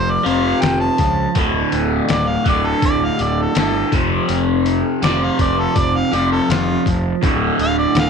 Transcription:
0.00 0.16 F1 medium
0.00 0.23 F2 medium
0.00 0.24 C3 medium
0.00 0.23 F3 medium
0.00 0.12 C5 medium
0.10 0.28 D5 medium
0.23 0.52 F1 medium
0.23 0.98 F2 medium
0.23 0.97 C3 medium
0.23 1.38 F3 medium
0.23 0.62 F5 medium
0.23 open hi-hat soft
0.61 0.89 F1 medium
0.61 0.79 G5 medium
0.61 snare loud
0.61 open hi-hat medium
0.80 1.34 A5 medium
0.98 1.26 C#2 medium
0.98 kick medium
0.98 snare soft
0.98 open hi-hat soft
1.35 1.62 D1 medium
1.35 2.43 D2 medium
1.35 2.44 A2 medium
1.35 2.44 D3 medium
1.35 kick loud
1.35 open hi-hat medium
1.72 1.99 D1 medium
1.72 open hi-hat soft
2.09 2.36 D1 medium
2.09 2.29 D5 medium
2.09 snare medium
2.09 open hi-hat medium
2.28 2.45 F5 medium
2.45 2.72 D1 medium
2.45 3.54 D2 medium
2.45 3.55 A2 medium
2.45 3.53 D3 medium
2.45 2.68 D5 medium
2.45 kick medium
2.45 open hi-hat soft
2.67 2.83 A4 medium
2.82 3.09 D1 medium
2.82 3.06 D5 medium
2.82 kick loud
2.82 open hi-hat medium
3.05 3.24 F5 medium
3.19 3.46 D1 medium
3.19 3.44 D5 medium
3.19 open hi-hat soft
3.42 3.57 A4 medium
3.55 3.82 G1 medium
3.55 3.90 D2 medium
3.55 3.91 A2 medium
3.55 3.92 D3 medium
3.55 3.93 A4 medium
3.55 snare loud
3.55 open hi-hat medium
3.91 4.19 F1 medium
3.91 5.00 F2 medium
3.91 5.01 C3 medium
3.91 5.05 F3 loud
3.91 kick loud
3.91 open hi-hat medium
4.29 4.82 F1 medium
4.29 open hi-hat medium
4.66 open hi-hat soft
5.02 5.29 F1 medium
5.02 6.10 F2 medium
5.02 6.11 C3 medium
5.02 6.11 F3 medium
5.02 5.26 D5 medium
5.02 snare loud
5.02 open hi-hat medium
5.24 5.40 F5 medium
5.39 5.66 F1 medium
5.39 5.62 D5 medium
5.39 kick medium
5.39 open hi-hat medium
5.60 5.79 A4 medium
5.76 6.02 F1 medium
5.76 5.98 D5 medium
5.76 kick medium
5.76 open hi-hat medium
5.96 6.16 F5 medium
6.12 6.39 F1 medium
6.12 6.85 F2 medium
6.12 6.84 C3 medium
6.12 7.25 F3 medium
6.12 6.31 D5 medium
6.12 open hi-hat soft
6.32 6.51 A4 medium
6.49 6.76 F1 medium
6.49 6.85 F4 loud
6.49 snare loud
6.49 open hi-hat medium
6.86 7.12 F1 medium
6.86 kick medium
6.86 open hi-hat soft
7.22 7.49 D1 medium
7.22 8.10 D2 medium
7.22 8.10 A2 medium
7.22 8.10 D3 medium
7.22 kick loud
7.22 open hi-hat medium
7.59 7.85 D1 medium
7.59 7.78 F5 medium
7.59 open hi-hat soft
7.79 7.95 D5 medium
7.95 8.10 D1 medium
7.95 snare loud
7.95 open hi-hat medium
7.99 8.10 F5 loud

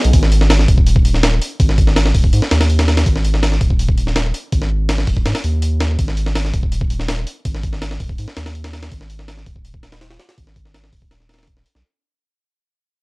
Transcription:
0.00 0.11 D#5 loud
0.04 0.13 B1 medium
0.04 open hi-hat medium
0.13 0.67 G#1 loud
0.13 kick loud
0.13 open hi-hat medium
0.23 snare medium
0.32 open hi-hat medium
0.41 snare soft
0.50 snare loud
0.50 open hi-hat medium
0.59 snare soft
0.68 1.40 D#1 medium
0.68 kick medium
0.68 open hi-hat medium
0.78 kick loud
0.87 open hi-hat medium
0.96 kick medium
1.05 open hi-hat medium
1.14 snare soft
1.23 snare loud
1.23 open hi-hat medium
1.42 open hi-hat medium
1.60 2.13 G#1 loud
1.60 kick loud
1.60 open hi-hat medium
1.69 snare soft
1.78 kick medium
1.78 open hi-hat medium
1.87 snare soft
1.96 snare loud
1.96 open hi-hat medium
2.06 snare medium
2.15 2.32 D#1 medium
2.15 kick medium
2.15 open hi-hat medium
2.24 kick medium
2.33 2.41 G#2 medium
2.33 open hi-hat medium
2.42 snare medium
2.51 3.05 D#2 medium
2.51 snare loud
2.51 open hi-hat medium
2.61 snare loud
2.61 open hi-hat medium
2.70 open hi-hat medium
2.79 snare loud
2.79 open hi-hat medium
2.88 snare loud
2.88 open hi-hat medium
2.97 snare loud
2.97 open hi-hat medium
3.06 3.60 G#1 loud
3.06 kick loud
3.06 open hi-hat medium
3.16 snare soft
3.25 open hi-hat medium
3.34 snare soft
3.43 snare loud
3.43 open hi-hat medium
3.52 snare soft
3.61 4.33 D#1 medium
3.61 kick loud
3.61 open hi-hat medium
3.70 kick medium
3.79 open hi-hat medium
3.89 kick loud
3.98 open hi-hat medium
4.07 snare soft
4.16 snare loud
4.16 open hi-hat medium
4.34 open hi-hat medium
4.52 5.06 G#1 loud
4.52 kick loud
4.52 open hi-hat medium
4.62 snare soft
4.89 snare loud
4.89 open hi-hat medium
4.98 snare medium
5.07 5.25 D#1 medium
5.07 kick medium
5.07 open hi-hat medium
5.17 kick medium
5.26 5.34 G#2 medium
5.26 snare loud
5.26 open hi-hat medium
5.35 snare loud
5.35 open hi-hat medium
5.44 5.97 D#2 medium
5.44 open hi-hat medium
5.62 open hi-hat medium
5.80 snare loud
5.80 open hi-hat medium
5.99 6.52 G#1 loud
5.99 kick loud
5.99 open hi-hat medium
6.08 snare soft
6.17 open hi-hat medium
6.26 snare soft
6.35 snare loud
6.35 open hi-hat medium
6.45 snare soft
6.54 7.25 D#1 medium
6.54 kick medium
6.54 open hi-hat medium
6.63 kick medium
6.72 open hi-hat medium
6.81 kick medium
6.90 open hi-hat medium
6.99 snare soft
7.08 snare loud
7.08 open hi-hat medium
7.27 open hi-hat medium
7.45 7.99 G#1 loud
7.45 kick loud
7.45 open hi-hat medium
7.55 snare soft
7.63 kick medium
7.63 open hi-hat medium
7.73 snare soft
7.82 snare loud
7.82 open hi-hat medium
7.91 snare medium
8.00 8.18 D#1 medium
8.00 kick medium
8.00 open hi-hat medium
8.09 kick medium
8.18 8.27 G#2 medium
8.18 open hi-hat medium
8.28 snare medium
8.37 8.90 D#2 medium
8.37 snare loud
8.37 open hi-hat medium
8.46 snare loud
8.46 open hi-hat medium
8.55 open hi-hat medium
8.64 snare loud
8.64 open hi-hat medium
8.73 snare loud
8.73 open hi-hat medium
8.83 snare loud
8.83 open hi-hat medium
8.92 9.45 G#1 loud
8.92 kick loud
8.92 open hi-hat medium
9.01 snare soft
9.10 open hi-hat medium
9.19 snare soft
9.28 snare loud
9.28 open hi-hat medium
9.37 snare soft
9.46 10.18 D#1 medium
9.46 kick medium
9.46 open hi-hat medium
9.56 kick medium
9.65 open hi-hat medium
9.74 kick medium
9.83 snare loud
9.83 open hi-hat medium
9.92 snare loud
9.92 open hi-hat medium
10.01 snare loud
10.01 open hi-hat medium
10.11 snare loud
10.11 open hi-hat medium
10.20 snare loud
10.20 open hi-hat medium
10.29 snare loud
10.29 open hi-hat medium
10.38 10.91 G#1 loud
10.38 kick loud
10.38 open hi-hat medium
10.47 snare soft
10.56 kick medium
10.56 open hi-hat medium
10.65 snare soft
10.74 snare loud
10.74 open hi-hat medium
10.84 snare medium
10.93 11.64 D#1 medium
10.93 kick medium
10.93 open hi-hat medium
11.02 kick medium
11.11 snare loud
11.11 open hi-hat medium
11.20 snare soft
11.29 snare medium
11.29 open hi-hat medium
11.34 snare medium
11.34 open hi-hat medium
11.39 snare medium
11.39 open hi-hat medium
11.43 snare medium
11.43 open hi-hat medium
11.47 kick loud
11.47 open hi-hat medium
11.57 snare soft
11.66 open hi-hat medium
11.75 11.83 B1 medium
11.75 snare soft

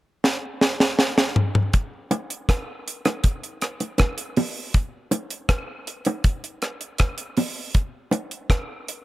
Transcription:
0.24 snare medium
0.61 snare medium
0.80 snare medium
0.99 snare medium
1.18 snare medium
1.36 mid tom loud
1.55 mid tom loud
1.73 kick loud
1.73 closed hi-hat medium
2.11 closed hi-hat medium
2.11 high bongo medium
2.30 closed hi-hat medium
2.49 kick loud
2.49 cross-stick loud
2.49 closed hi-hat medium
2.88 closed hi-hat medium
3.05 cross-stick medium
3.05 closed hi-hat medium
3.05 high bongo medium
3.24 kick loud
3.24 closed hi-hat loud
3.43 closed hi-hat soft
3.62 cross-stick medium
3.62 closed hi-hat medium
3.80 closed hi-hat soft
3.80 high bongo soft
3.98 kick medium
3.98 cross-stick medium
3.98 closed hi-hat medium
3.98 high bongo medium
4.18 closed hi-hat medium
4.37 open hi-hat medium
4.37 low bongo medium
4.74 kick loud
4.74 closed hi-hat medium
5.11 closed hi-hat medium
5.11 high bongo medium
5.30 closed hi-hat medium
5.49 kick loud
5.49 cross-stick loud
5.49 closed hi-hat medium
5.87 closed hi-hat medium
6.05 closed hi-hat medium
6.05 high bongo medium
6.24 kick loud
6.24 closed hi-hat medium
6.44 closed hi-hat medium
6.62 cross-stick medium
6.62 closed hi-hat medium
6.81 closed hi-hat soft
6.98 kick medium
6.98 cross-stick medium
6.98 closed hi-hat medium
7.18 closed hi-hat medium
7.37 open hi-hat medium
7.37 low bongo medium
7.75 kick loud
7.75 closed hi-hat loud
8.11 closed hi-hat medium
8.11 high bongo medium
8.31 closed hi-hat medium
8.50 kick loud
8.50 cross-stick loud
8.50 closed hi-hat medium
8.88 closed hi-hat medium

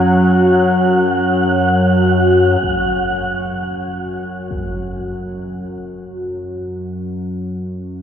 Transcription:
0.00 2.62 F#2 medium
0.00 2.61 F#3 medium
0.00 2.63 F#4 medium
0.00 2.62 C#5 medium
0.00 2.65 F#5 medium
0.00 2.61 G#5 medium
2.63 8.02 F#2 medium
2.63 8.02 F#3 medium
2.63 impact medium
4.51 impact medium

